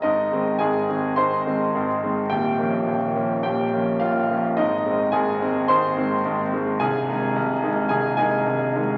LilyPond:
<<
  \new Staff \with { instrumentName = "Grand piano" } { \time 4/4 \key aes \major \tempo 4 = 107 <ees' ees''>4 <aes' aes''>4 <c'' c'''>2 | <g' g''>2 <g' g''>4 <f' f''>4 | <ees' ees''>4 <aes' aes''>4 <c'' c'''>2 | <aes' aes''>2 <aes' aes''>8 <aes' aes''>4. | }
  \new Staff \with { instrumentName = "Grand piano" } { \clef bass \time 4/4 \key aes \major <aes,, aes,>8 <ees aes c'>8 <aes,, aes,>8 <ees aes c'>8 <aes,, aes,>8 <ees aes c'>8 <aes,, aes,>8 <ees aes c'>8 | <ees,, ees,>8 <f bes des'>8 <ees,, ees,>8 <f bes des'>8 <ees,, ees,>8 <f bes des'>8 ees,8 <f bes des'>8 | <aes,, aes,>8 <ees aes c'>8 <aes,, aes,>8 <ees aes c'>8 <aes,, aes,>8 <ees aes c'>8 <aes,, aes,>8 <ees aes c'>8 | <c,, c,>8 <ees aes ees'>8 <c,, c,>8 <ees aes ees'>8 <c,, c,>8 <ees aes ees'>8 <c,, c,>8 <ees aes ees'>8 | }
>>